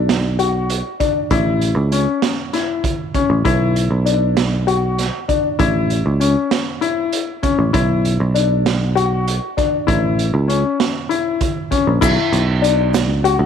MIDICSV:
0, 0, Header, 1, 4, 480
1, 0, Start_track
1, 0, Key_signature, 2, "minor"
1, 0, Tempo, 612245
1, 1027, Time_signature, 7, 3, 24, 8
1, 10551, End_track
2, 0, Start_track
2, 0, Title_t, "Grand piano"
2, 0, Program_c, 0, 0
2, 0, Note_on_c, 0, 62, 64
2, 114, Note_off_c, 0, 62, 0
2, 304, Note_on_c, 0, 66, 60
2, 592, Note_off_c, 0, 66, 0
2, 782, Note_on_c, 0, 62, 60
2, 927, Note_off_c, 0, 62, 0
2, 1026, Note_on_c, 0, 64, 72
2, 1313, Note_off_c, 0, 64, 0
2, 1507, Note_on_c, 0, 61, 59
2, 1794, Note_off_c, 0, 61, 0
2, 1986, Note_on_c, 0, 64, 57
2, 2274, Note_off_c, 0, 64, 0
2, 2464, Note_on_c, 0, 61, 63
2, 2609, Note_off_c, 0, 61, 0
2, 2702, Note_on_c, 0, 64, 76
2, 2991, Note_off_c, 0, 64, 0
2, 3178, Note_on_c, 0, 62, 60
2, 3468, Note_off_c, 0, 62, 0
2, 3661, Note_on_c, 0, 66, 59
2, 3950, Note_off_c, 0, 66, 0
2, 4143, Note_on_c, 0, 62, 64
2, 4288, Note_off_c, 0, 62, 0
2, 4381, Note_on_c, 0, 64, 74
2, 4671, Note_off_c, 0, 64, 0
2, 4863, Note_on_c, 0, 61, 60
2, 5152, Note_off_c, 0, 61, 0
2, 5341, Note_on_c, 0, 64, 67
2, 5630, Note_off_c, 0, 64, 0
2, 5823, Note_on_c, 0, 61, 61
2, 5968, Note_off_c, 0, 61, 0
2, 6061, Note_on_c, 0, 64, 71
2, 6351, Note_off_c, 0, 64, 0
2, 6541, Note_on_c, 0, 62, 60
2, 6831, Note_off_c, 0, 62, 0
2, 7020, Note_on_c, 0, 66, 64
2, 7309, Note_off_c, 0, 66, 0
2, 7504, Note_on_c, 0, 62, 63
2, 7648, Note_off_c, 0, 62, 0
2, 7737, Note_on_c, 0, 64, 74
2, 8027, Note_off_c, 0, 64, 0
2, 8216, Note_on_c, 0, 61, 59
2, 8506, Note_off_c, 0, 61, 0
2, 8697, Note_on_c, 0, 64, 65
2, 8987, Note_off_c, 0, 64, 0
2, 9180, Note_on_c, 0, 61, 59
2, 9325, Note_off_c, 0, 61, 0
2, 9417, Note_on_c, 0, 64, 82
2, 9706, Note_off_c, 0, 64, 0
2, 9893, Note_on_c, 0, 62, 69
2, 10183, Note_off_c, 0, 62, 0
2, 10382, Note_on_c, 0, 66, 71
2, 10551, Note_off_c, 0, 66, 0
2, 10551, End_track
3, 0, Start_track
3, 0, Title_t, "Picked electric bass"
3, 0, Program_c, 1, 34
3, 0, Note_on_c, 1, 35, 73
3, 634, Note_off_c, 1, 35, 0
3, 1026, Note_on_c, 1, 33, 81
3, 1367, Note_off_c, 1, 33, 0
3, 1380, Note_on_c, 1, 37, 74
3, 1610, Note_off_c, 1, 37, 0
3, 2586, Note_on_c, 1, 33, 64
3, 2700, Note_off_c, 1, 33, 0
3, 2706, Note_on_c, 1, 35, 73
3, 3047, Note_off_c, 1, 35, 0
3, 3061, Note_on_c, 1, 35, 71
3, 3994, Note_off_c, 1, 35, 0
3, 4387, Note_on_c, 1, 33, 82
3, 4728, Note_off_c, 1, 33, 0
3, 4749, Note_on_c, 1, 37, 81
3, 4976, Note_off_c, 1, 37, 0
3, 5948, Note_on_c, 1, 33, 64
3, 6061, Note_off_c, 1, 33, 0
3, 6069, Note_on_c, 1, 35, 78
3, 6409, Note_off_c, 1, 35, 0
3, 6431, Note_on_c, 1, 35, 77
3, 7358, Note_off_c, 1, 35, 0
3, 7747, Note_on_c, 1, 33, 79
3, 8087, Note_off_c, 1, 33, 0
3, 8104, Note_on_c, 1, 37, 78
3, 8332, Note_off_c, 1, 37, 0
3, 9309, Note_on_c, 1, 34, 60
3, 9421, Note_off_c, 1, 34, 0
3, 9424, Note_on_c, 1, 35, 85
3, 9538, Note_off_c, 1, 35, 0
3, 9663, Note_on_c, 1, 35, 76
3, 10265, Note_off_c, 1, 35, 0
3, 10265, Note_on_c, 1, 37, 88
3, 10491, Note_off_c, 1, 37, 0
3, 10500, Note_on_c, 1, 37, 82
3, 10551, Note_off_c, 1, 37, 0
3, 10551, End_track
4, 0, Start_track
4, 0, Title_t, "Drums"
4, 72, Note_on_c, 9, 38, 87
4, 72, Note_on_c, 9, 42, 65
4, 150, Note_off_c, 9, 38, 0
4, 150, Note_off_c, 9, 42, 0
4, 307, Note_on_c, 9, 42, 49
4, 385, Note_off_c, 9, 42, 0
4, 546, Note_on_c, 9, 42, 68
4, 624, Note_off_c, 9, 42, 0
4, 786, Note_on_c, 9, 42, 54
4, 787, Note_on_c, 9, 36, 64
4, 865, Note_off_c, 9, 36, 0
4, 865, Note_off_c, 9, 42, 0
4, 1024, Note_on_c, 9, 42, 64
4, 1026, Note_on_c, 9, 36, 90
4, 1102, Note_off_c, 9, 42, 0
4, 1104, Note_off_c, 9, 36, 0
4, 1265, Note_on_c, 9, 42, 51
4, 1343, Note_off_c, 9, 42, 0
4, 1504, Note_on_c, 9, 42, 54
4, 1583, Note_off_c, 9, 42, 0
4, 1743, Note_on_c, 9, 38, 85
4, 1743, Note_on_c, 9, 42, 69
4, 1821, Note_off_c, 9, 38, 0
4, 1821, Note_off_c, 9, 42, 0
4, 1987, Note_on_c, 9, 38, 26
4, 1987, Note_on_c, 9, 42, 52
4, 2065, Note_off_c, 9, 38, 0
4, 2065, Note_off_c, 9, 42, 0
4, 2226, Note_on_c, 9, 36, 83
4, 2228, Note_on_c, 9, 42, 71
4, 2305, Note_off_c, 9, 36, 0
4, 2306, Note_off_c, 9, 42, 0
4, 2465, Note_on_c, 9, 42, 50
4, 2466, Note_on_c, 9, 36, 65
4, 2544, Note_off_c, 9, 36, 0
4, 2544, Note_off_c, 9, 42, 0
4, 2707, Note_on_c, 9, 36, 82
4, 2708, Note_on_c, 9, 42, 66
4, 2785, Note_off_c, 9, 36, 0
4, 2786, Note_off_c, 9, 42, 0
4, 2948, Note_on_c, 9, 42, 46
4, 3026, Note_off_c, 9, 42, 0
4, 3185, Note_on_c, 9, 42, 49
4, 3264, Note_off_c, 9, 42, 0
4, 3424, Note_on_c, 9, 38, 92
4, 3424, Note_on_c, 9, 42, 68
4, 3503, Note_off_c, 9, 38, 0
4, 3503, Note_off_c, 9, 42, 0
4, 3667, Note_on_c, 9, 42, 49
4, 3745, Note_off_c, 9, 42, 0
4, 3908, Note_on_c, 9, 38, 30
4, 3908, Note_on_c, 9, 42, 63
4, 3987, Note_off_c, 9, 38, 0
4, 3987, Note_off_c, 9, 42, 0
4, 4148, Note_on_c, 9, 36, 64
4, 4149, Note_on_c, 9, 42, 50
4, 4226, Note_off_c, 9, 36, 0
4, 4227, Note_off_c, 9, 42, 0
4, 4386, Note_on_c, 9, 42, 65
4, 4387, Note_on_c, 9, 36, 90
4, 4464, Note_off_c, 9, 42, 0
4, 4466, Note_off_c, 9, 36, 0
4, 4627, Note_on_c, 9, 42, 47
4, 4705, Note_off_c, 9, 42, 0
4, 4868, Note_on_c, 9, 42, 50
4, 4946, Note_off_c, 9, 42, 0
4, 5106, Note_on_c, 9, 38, 90
4, 5106, Note_on_c, 9, 42, 69
4, 5184, Note_off_c, 9, 38, 0
4, 5184, Note_off_c, 9, 42, 0
4, 5346, Note_on_c, 9, 42, 57
4, 5425, Note_off_c, 9, 42, 0
4, 5586, Note_on_c, 9, 42, 74
4, 5664, Note_off_c, 9, 42, 0
4, 5826, Note_on_c, 9, 42, 57
4, 5828, Note_on_c, 9, 36, 68
4, 5905, Note_off_c, 9, 42, 0
4, 5906, Note_off_c, 9, 36, 0
4, 6066, Note_on_c, 9, 42, 69
4, 6068, Note_on_c, 9, 36, 91
4, 6145, Note_off_c, 9, 42, 0
4, 6147, Note_off_c, 9, 36, 0
4, 6310, Note_on_c, 9, 42, 53
4, 6389, Note_off_c, 9, 42, 0
4, 6550, Note_on_c, 9, 42, 52
4, 6628, Note_off_c, 9, 42, 0
4, 6790, Note_on_c, 9, 38, 92
4, 6790, Note_on_c, 9, 42, 68
4, 6868, Note_off_c, 9, 38, 0
4, 6868, Note_off_c, 9, 42, 0
4, 7033, Note_on_c, 9, 42, 49
4, 7111, Note_off_c, 9, 42, 0
4, 7272, Note_on_c, 9, 42, 65
4, 7350, Note_off_c, 9, 42, 0
4, 7510, Note_on_c, 9, 36, 68
4, 7511, Note_on_c, 9, 42, 52
4, 7588, Note_off_c, 9, 36, 0
4, 7589, Note_off_c, 9, 42, 0
4, 7748, Note_on_c, 9, 36, 83
4, 7748, Note_on_c, 9, 42, 65
4, 7826, Note_off_c, 9, 42, 0
4, 7827, Note_off_c, 9, 36, 0
4, 7988, Note_on_c, 9, 42, 47
4, 8066, Note_off_c, 9, 42, 0
4, 8228, Note_on_c, 9, 42, 46
4, 8307, Note_off_c, 9, 42, 0
4, 8467, Note_on_c, 9, 38, 91
4, 8467, Note_on_c, 9, 42, 65
4, 8545, Note_off_c, 9, 38, 0
4, 8545, Note_off_c, 9, 42, 0
4, 8707, Note_on_c, 9, 42, 51
4, 8786, Note_off_c, 9, 42, 0
4, 8943, Note_on_c, 9, 42, 72
4, 8946, Note_on_c, 9, 36, 91
4, 9021, Note_off_c, 9, 42, 0
4, 9024, Note_off_c, 9, 36, 0
4, 9186, Note_on_c, 9, 36, 64
4, 9186, Note_on_c, 9, 42, 56
4, 9264, Note_off_c, 9, 42, 0
4, 9265, Note_off_c, 9, 36, 0
4, 9422, Note_on_c, 9, 49, 92
4, 9425, Note_on_c, 9, 36, 102
4, 9429, Note_on_c, 9, 82, 54
4, 9500, Note_off_c, 9, 49, 0
4, 9504, Note_off_c, 9, 36, 0
4, 9507, Note_off_c, 9, 82, 0
4, 9665, Note_on_c, 9, 42, 59
4, 9743, Note_off_c, 9, 42, 0
4, 9909, Note_on_c, 9, 42, 62
4, 9987, Note_off_c, 9, 42, 0
4, 10148, Note_on_c, 9, 38, 109
4, 10148, Note_on_c, 9, 42, 73
4, 10148, Note_on_c, 9, 82, 46
4, 10226, Note_off_c, 9, 82, 0
4, 10227, Note_off_c, 9, 38, 0
4, 10227, Note_off_c, 9, 42, 0
4, 10388, Note_on_c, 9, 42, 57
4, 10466, Note_off_c, 9, 42, 0
4, 10551, End_track
0, 0, End_of_file